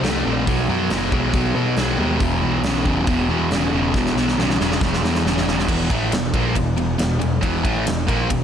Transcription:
0.02 0.24 C2 medium
0.02 0.23 C3 medium
0.02 0.23 A3 medium
0.02 snare loud
0.02 open hi-hat soft
0.25 0.46 A#1 medium
0.25 0.45 C3 medium
0.25 0.45 A3 medium
0.47 0.67 B1 medium
0.47 0.67 B2 medium
0.47 0.67 F#3 medium
0.47 kick loud
0.47 open hi-hat soft
0.68 0.89 F#2 medium
0.68 0.88 B2 medium
0.68 0.89 F#3 medium
0.90 1.11 F#1 medium
0.90 1.10 B2 medium
0.90 1.10 G#3 medium
0.90 snare loud
0.90 open hi-hat medium
1.12 1.33 B1 medium
1.12 1.32 B2 medium
1.12 1.32 G#3 medium
1.12 kick medium
1.33 1.54 B1 medium
1.33 1.54 B2 medium
1.33 1.54 F#3 medium
1.33 kick loud
1.33 open hi-hat soft
1.54 1.75 B2 medium
1.54 1.75 F#3 medium
1.77 1.97 B1 medium
1.77 1.97 B2 medium
1.77 1.97 G#3 medium
1.77 snare loud
1.77 open hi-hat soft
1.97 2.19 D#2 loud
1.97 2.18 B2 medium
1.97 2.19 G#3 medium
2.20 2.41 E1 medium
2.20 2.40 E2 medium
2.20 2.40 B2 medium
2.20 kick loud
2.20 open hi-hat soft
2.42 2.63 B1 medium
2.42 2.62 E2 medium
2.42 2.62 B2 medium
2.63 2.85 B1 medium
2.63 2.84 E2 medium
2.63 2.84 C#3 medium
2.63 snare loud
2.63 open hi-hat soft
2.85 3.06 E1 medium
2.85 3.05 E2 medium
2.85 3.05 C#3 medium
2.85 kick medium
3.07 3.28 E1 medium
3.07 3.27 E2 medium
3.07 3.27 B2 medium
3.07 kick loud
3.07 open hi-hat soft
3.29 3.49 E2 medium
3.29 3.50 E2 medium
3.29 3.49 B2 medium
3.51 3.72 E1 medium
3.51 3.71 E2 medium
3.51 3.71 C#3 medium
3.51 snare medium
3.51 open hi-hat soft
3.73 3.93 E1 medium
3.73 3.92 E2 medium
3.73 3.93 C#3 medium
3.94 4.15 E1 medium
3.94 4.14 E2 medium
3.94 4.15 B2 medium
3.94 kick loud
3.94 snare medium
4.06 snare medium
4.15 4.36 B1 medium
4.15 4.36 E2 medium
4.15 4.36 B2 medium
4.15 snare medium
4.28 snare medium
4.37 4.58 B1 medium
4.37 4.58 E2 medium
4.37 4.58 C#3 medium
4.37 snare medium
4.50 snare medium
4.59 4.80 E1 medium
4.59 4.80 E2 medium
4.59 4.80 C#3 medium
4.59 snare medium
4.72 snare medium
4.81 5.02 E1 medium
4.81 5.02 E2 medium
4.81 5.02 B2 medium
4.81 kick loud
4.81 snare medium
4.94 snare medium
5.03 5.24 E2 medium
5.03 5.23 E2 medium
5.03 5.23 B2 medium
5.03 snare medium
5.15 snare medium
5.25 5.45 E1 medium
5.25 5.45 E2 medium
5.25 5.45 C#3 medium
5.25 snare medium
5.38 snare medium
5.46 5.67 E1 medium
5.46 5.66 E2 medium
5.46 5.67 C#3 medium
5.46 snare medium
5.59 snare medium
5.67 5.89 E1 medium
5.67 5.89 E2 medium
5.67 5.90 B2 loud
5.67 5.90 E3 loud
5.67 kick medium
5.67 crash loud
5.90 6.11 A1 medium
5.90 6.12 A2 medium
5.90 6.12 E3 medium
5.90 6.12 A3 medium
5.90 kick loud
5.90 ride medium
6.12 6.32 E1 medium
6.12 6.30 E2 medium
6.12 6.30 B2 medium
6.12 snare loud
6.12 ride medium
6.34 6.54 A#1 medium
6.34 6.55 A#2 medium
6.34 6.55 F3 medium
6.34 6.56 A#3 loud
6.34 kick loud
6.34 ride medium
6.55 6.76 E1 medium
6.55 6.73 E2 medium
6.55 6.73 B2 medium
6.55 kick medium
6.55 ride medium
6.77 6.98 E1 medium
6.77 6.95 E2 medium
6.77 6.95 B2 medium
6.77 ride medium
6.98 7.19 E1 medium
6.98 7.16 E2 medium
6.98 7.17 B2 medium
6.98 snare loud
6.98 ride medium
7.19 7.42 E1 medium
7.19 7.38 E2 medium
7.19 7.38 B2 medium
7.19 ride medium
7.41 7.63 E1 medium
7.41 7.63 E2 medium
7.41 7.63 B2 medium
7.41 7.63 E3 medium
7.41 kick medium
7.41 ride medium
7.63 7.85 A1 medium
7.63 7.85 A2 medium
7.63 7.86 E3 medium
7.63 7.86 A3 medium
7.63 kick medium
7.63 ride medium
7.86 8.07 E1 medium
7.86 8.04 E2 medium
7.86 8.04 B2 medium
7.86 snare loud
7.86 ride loud
8.07 8.29 A#1 medium
8.07 8.29 A#2 medium
8.07 8.29 F3 medium
8.07 8.29 A#3 medium
8.07 kick loud
8.07 ride medium
8.29 8.44 E1 medium
8.29 8.44 E2 medium
8.29 8.44 B2 medium
8.29 kick medium
8.29 ride medium

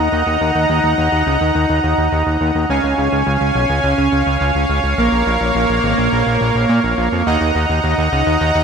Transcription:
0.00 2.66 D#4 medium
0.00 2.66 D#5 medium
0.00 2.66 F#5 medium
0.00 2.66 A#5 medium
0.12 0.23 D#2 medium
0.27 0.37 D#2 medium
0.41 0.52 D#2 loud
0.55 0.66 D#2 medium
0.70 0.80 D#2 medium
0.84 0.94 D#2 medium
0.98 1.09 D#2 loud
1.12 1.23 D#2 medium
1.27 1.37 C#2 medium
1.41 1.52 D#2 medium
1.55 1.66 D#2 loud
1.70 1.80 D#2 medium
1.84 1.94 D#2 medium
1.98 2.09 D#2 medium
2.12 2.23 D#2 loud
2.27 2.37 D#2 medium
2.41 2.51 D#2 loud
2.55 2.66 D#2 medium
2.69 2.80 C#2 medium
2.69 4.96 C#4 medium
2.69 7.23 C#5 medium
2.69 7.23 F5 medium
2.69 4.96 G#5 medium
2.84 2.94 C#2 medium
2.98 3.09 C#2 medium
3.12 3.23 C#2 medium
3.27 3.37 C#2 loud
3.41 3.51 C#2 medium
3.55 3.66 B1 medium
3.70 3.80 C#2 medium
3.84 3.94 C#2 medium
3.98 4.09 C#2 medium
4.12 4.23 C#2 medium
4.27 4.37 C#2 medium
4.41 4.52 C#2 loud
4.55 4.66 C#2 medium
4.70 4.80 C#2 medium
4.84 4.94 C#2 medium
4.98 5.09 A#1 loud
4.98 7.24 A#3 medium
4.98 7.24 A#4 medium
5.12 5.23 A#1 medium
5.27 5.37 A#1 medium
5.41 5.51 A#1 medium
5.55 5.66 A#1 loud
5.69 5.80 A#1 medium
5.84 5.94 G#1 medium
5.98 6.09 A#1 medium
6.12 6.23 A#1 medium
6.27 6.37 A#1 medium
6.41 6.52 A#1 medium
6.55 6.66 A#1 medium
6.70 6.80 A#2 loud
6.84 6.94 A#1 medium
6.98 7.09 A#1 medium
7.12 7.23 F2 medium
7.27 7.37 D#2 loud
7.27 8.64 D#4 medium
7.27 8.64 D#5 medium
7.27 8.64 F#5 medium
7.27 8.64 A#5 medium
7.41 7.52 D#2 medium
7.55 7.66 D#2 medium
7.70 7.80 D#2 medium
7.84 7.94 D#2 loud
7.98 8.09 D#2 medium
8.12 8.23 C#2 medium
8.27 8.37 D#2 medium
8.41 8.52 D#2 loud
8.55 8.64 D#2 medium

